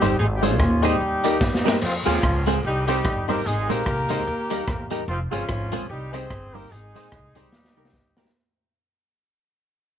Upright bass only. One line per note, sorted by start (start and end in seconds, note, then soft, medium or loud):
0.02 0.16 G1 medium
0.19 0.60 G#1 loud
0.60 0.94 D#2 medium
1.00 1.35 D#2 loud
1.41 1.76 G2 medium
1.82 2.02 F2 loud
2.06 2.20 D#2 medium
2.23 2.58 C#2 loud
2.65 2.99 C2 medium
3.05 3.39 G1 medium
3.46 3.66 G#1 loud
3.70 3.84 A#1 loud
3.86 4.07 C2 medium
4.10 4.24 C#2 loud
4.27 4.62 D#2 loud
4.68 5.02 E2 medium
5.08 5.28 F1 loud
5.33 5.47 G1 medium
5.49 5.69 G#1 medium
5.73 5.87 A#1 medium
5.90 6.24 C2 loud
6.30 6.65 G1 loud
6.72 6.92 G#1 loud
6.95 7.10 A#1 medium
7.13 7.33 C2 medium
7.36 7.50 C#2 medium
7.52 7.76 D#2 loud
7.76 7.91 C2 medium
7.93 8.28 D2 medium